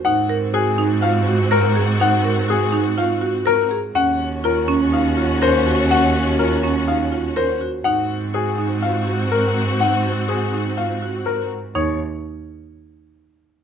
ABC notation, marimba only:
X:1
M:4/4
L:1/8
Q:1/4=123
K:Abmix
V:1 name="Marimba"
E B G E F G B A | E B G E F G B A | D z F D E F B G | D z F D E F B G |
E z G E F G B z | E z G E F G B z | E z6 z |]